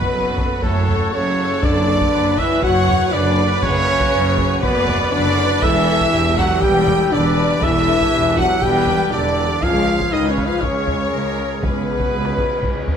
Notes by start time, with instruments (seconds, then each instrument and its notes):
Already playing: trombone section B2, french horn section B3, woodwind section C#4 F#4 A4 F#5, viola section B4, violin section B4, trumpet B4
0.01 taiko
0.13 double bass section F#1, cello section F#2, viola section A4
0.38 taiko
0.62 double bass section F#1, cello section F#2, trombone section A2, french horn section A3, trumpet A4, violin section A4, viola section C#5, taiko
0.88 taiko low
1.13 double bass section F#1, cello section F#2, trombone section C#3, french horn section C#4, viola section A4, violin section C#5, trumpet C#5
1.62 double bass section F#1, cello section F#2, trombone section D3, woodwind section B3 F#4 B4 F#5, french horn section D4, violin section D5, trumpet D5, taiko
2.01 taiko
2.12 double bass section F#1, cello section F#2, viola section B4
2.37 trombone section E3, french horn section E4, violin section E5, trumpet E5, taiko
2.63 double bass section F#1, cello section F#2, trombone section F#3, french horn section F#4, viola section C#5, violin section F#5, trumpet F#5, taiko
2.88 taiko low
3.12 double bass section F#1, cello section F#2, trombone section D3, french horn section D4, viola section B4, violin section D5, trumpet D5
3.62 double bass section F#1, cello section F#2, trombone section C#3, french horn section C#4, trumpet C#5, violin section C#5, taiko
4.00 taiko
4.13 double bass section F#1, cello section F#2, viola section C#5
4.37 taiko
4.62 double bass section F#1, cello section F#2, trombone section B2, french horn section B3, violin section B4, trumpet B4, viola section D5, taiko
4.88 taiko low
5.11 double bass section F#1, cello section F#2, trombone section D3, french horn section D4, viola section B4, violin section D5, trumpet D5
5.61 double bass section E1, cello section E2, trombone section E3, woodwind section D4 G4 B4 E5, french horn section E4, viola section A4, violin section E5, trumpet E5, taiko
6.00 taiko
6.12 double bass section E1, cello section E2, viola section G4
6.36 trombone section F#3, french horn section F#4, violin section F#5, trumpet F#5, taiko
6.62 double bass section E1, cello section E2, trombone section G3, french horn section G4, violin section G5, trumpet G5, taiko
6.87 taiko low
7.11 double bass section E1, cello section E2, trombone section D3, french horn section D4, viola section B4, violin section D5, trumpet D5
7.62 double bass section E1, cello section E2, trombone section E3, french horn section E4, viola section A4, violin section E5, trumpet E5, taiko
8.00 taiko
8.12 double bass section E1, cello section E2, viola section G4
8.37 trombone section F#3, french horn section F#4, violin section F#5, trumpet F#5, taiko
8.62 double bass section E1, cello section E2, trombone section G3, french horn section G4, viola section B4, violin section G5, trumpet G5, taiko
8.87 taiko low
9.12 double bass section E1, cello section E2, trombone section D3, french horn section D4, viola section G4, violin section D5, trumpet D5
9.62 double bass section C#2, cello section C#2, trombone section F3, woodwind section C#4 G#4 C#5 F5, french horn section F4, viola section G#4, violin section F5, trumpet F5, taiko
10.00 taiko
10.12 cello section C#2, double bass section C#2, trombone section D#3, french horn section D#4, viola section B4, violin section D#5, trumpet D#5
10.29 trombone section C#3, french horn section C#4, trumpet C#5, violin section C#5
10.38 taiko
10.46 trombone section F3, french horn section F4, trumpet F5, violin section F5
10.61 cello section C#2, double bass section C#2, trombone section C#3, french horn section C#4, trumpet C#5, viola section C#5, violin section C#5, taiko
10.88 taiko low
11.12 cello section C#2, double bass section C#2, viola section A#4
11.62 cello section C#2, double bass section C#2, trombone section B2, french horn section B3, viola section G#4, trumpet B4, violin section B4, taiko, cymbal swell
12.00 taiko
12.12 cello section C#2, double bass section C#2
12.25 taiko rim
12.37 taiko
12.62 cello section C#2, double bass section C#2, taiko
12.88 taiko low